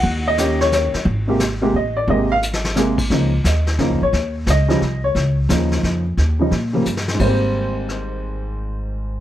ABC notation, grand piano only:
X:1
M:3/4
L:1/8
Q:"Swing" 1/4=176
K:Ab
V:1 name="Grand piano"
_g e2 d d2 | z4 e =d | e f z4 | z2 e3 d- |
d z e3 d- | d z4 z | z6 | c6- |
c6 |]
V:2 name="Grand piano" clef=bass
z2 [E,B,DG]3 z | z [C,A,B,G] z [C,A,B,G] z2 | [C,A,B,G] z3 [C,A,B,A] z | [D,F,B,E] z3 [D,F,B,E] z |
z3 [D,F,G,E] z2 | z2 [D,F,B,E]3 z | z [D,F,G,E] z [D,F,G,B,] z2 | [A,,G,B,C]6- |
[A,,G,B,C]6 |]